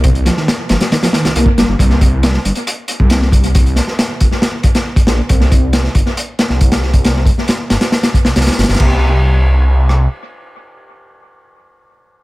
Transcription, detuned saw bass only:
\new Staff \with { instrumentName = "Detuned saw bass" } { \clef bass \time 4/4 \key c \minor \tempo 4 = 137 c,8 r4 g,,16 r4 c,16 c,16 r16 g,,16 g,,16 | c,4~ c,16 r16 g,,16 r4 c,4~ c,16~ | c,8 r4 g,,16 r4. r16 bes,,16 r16 | c,4~ c,16 r16 g,,16 r4 c,4~ c,16~ |
c,8 r4 g,,16 r4 c,16 c,16 r16 g,,16 g,,16 | c,2. r4 | r1 | }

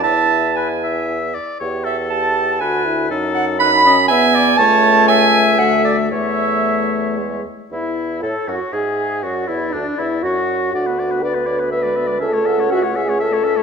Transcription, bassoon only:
\new Staff \with { instrumentName = "Bassoon" } { \clef bass \time 3/4 \key a \major \tempo 4 = 120 e,2~ e,8 r8 | e,2 d,4 | fis,2 e,4 | cis,2 d,4 |
e,2~ e,8 r8 | e,4 a,8 fis,8 gis,4 | fis,8 e,8 d,8 e,8 fis,4 | d,2. |
cis,2. | }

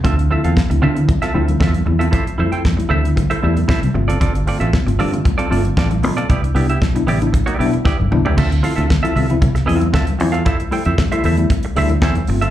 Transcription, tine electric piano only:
\new Staff \with { instrumentName = "Tine electric piano" } { \time 4/4 \key d \dorian \tempo 4 = 115 d16 <c' e'>16 <f c' e'>16 r8 <f c' e'>16 d16 <f c' e'>16 r8 <f c' e'>16 r8. <f c' e'>16 r16 | f16 <a e'>16 <g a e'>16 r8 <g a e'>16 f16 <g a e'>16 r8 <g a e'>16 r8. <a c' f'>16 r16 | <g, d>16 <c' f'>16 <a c' f'>16 r8 <a c' f'>16 <g, d>16 <a c' f'>16 r8 <a c' f'>16 r8. <a c' f'>16 r16 | <c g>16 <d' e'>16 <b d' e'>16 r8 <b d' e'>16 <c g>16 <b d' e'>16 r8 <b d' e'>16 r8. <b d' e'>16 r16 |
d16 <c' e'>16 <f c' e'>16 r8 <f c' e'>16 d16 <f c' e'>16 r8 <f c' e'>16 r8. <f c' e'>16 r16 | f16 <a e'>16 <g a e'>16 r8 <g a e'>16 f16 <g a e'>16 r8 <g a e'>16 r8. <a c' f'>16 r16 | }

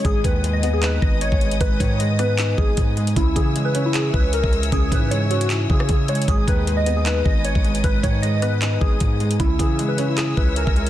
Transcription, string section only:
\new Staff \with { instrumentName = "String section" } { \time 4/4 \key gis \minor \tempo 4 = 154 << { <b' dis'' dis'''>1~ | <b' dis'' dis'''>1 | <cis'' e'' e'''>1~ | <cis'' e'' e'''>1 |
<b' dis'' dis'''>1~ | <b' dis'' dis'''>1 | <cis'' e'' e'''>1 | } \\ { gis''1~ | gis''1~ | gis''1~ | gis''1~ |
gis''1~ | gis''1 | gis''1 | } >> }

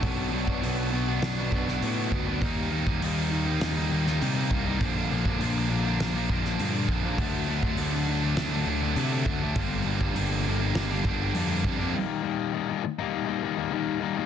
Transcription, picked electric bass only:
\new Staff \with { instrumentName = "Picked electric bass" } { \clef bass \time 4/4 \key ees \lydian \tempo 4 = 101 b,,8 b,,8 b,,4 b,,8 b,,8 a,8 d,8 | ees,8 ees,8 ees,4 ees,8 ees,8 c8 c,8 | bes,,8 bes,,8 bes,,4 bes,,8 bes,,8 g,8 bes,,8 | d,8 d,8 d,4 d,8 d,8 c8 d,8 |
g,,8 g,,8 g,,4 g,,8 g,,8 f,8 f,8 | r1 | }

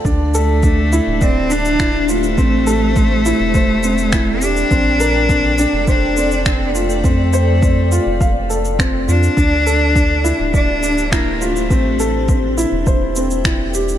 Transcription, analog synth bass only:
\new Staff \with { instrumentName = "Analog synth bass" } { \clef bass \time 4/4 \key d \minor \tempo 4 = 103 d,4.~ d,16 d,,2~ d,,16 | a,,4.~ a,,16 e,,2~ e,,16 | bes,,4.~ bes,,16 f,,2~ f,,16 | f,4.~ f,16 f,,4.~ f,,16 f,16 r16 |
d,4.~ d,16 d,,2~ d,,16 | a,,4.~ a,,16 e,,2~ e,,16 | }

